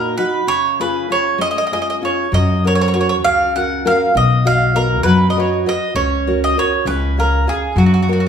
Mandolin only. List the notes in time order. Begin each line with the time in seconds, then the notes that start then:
Already playing: A#4
0.18 B4
0.48 C#5
0.81 B4
1.12 C#5
1.41 D#5
1.51 D#5
1.58 D#5
1.67 D#5
1.73 D#5
1.82 D#5
1.90 D#5
2.05 C#5
2.34 D#5
2.67 C#5
2.75 C#5
2.81 C#5
2.88 C#5
2.94 C#5
3.01 C#5
3.09 C#5
3.24 F5
3.56 F#5
3.87 F5
4.17 D#5
4.47 F5
4.76 A#4
5.03 B4
5.30 D#5
5.40 C#5
5.69 D#5
5.96 C#5
6.44 D#5
6.59 C#5
6.87 B4
7.20 A#4
7.49 G#4
7.78 F#4
7.86 F#4
7.94 F#4
8.03 F#4
8.13 F#4
8.20 F#4